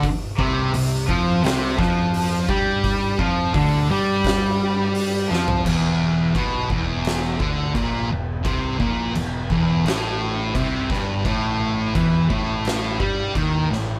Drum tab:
CC |----------------|----------------|x---x---x---x---|x---x---x---x---|
HH |o---o---o---o---|o---o---o---o---|----------------|----------------|
SD |--------o-o-----|--------o-----o-|--------o-------|--------o-----o-|
FT |----------------|---------------o|----------------|----------------|
BD |o-o---o---o---o-|o-o-o---o-------|o---o-o---o-o---|o-o---o-----o-o-|

CC |x---x---x---x---|
HH |----------------|
SD |--------o-----o-|
FT |----------------|
BD |o---o-o---o-o---|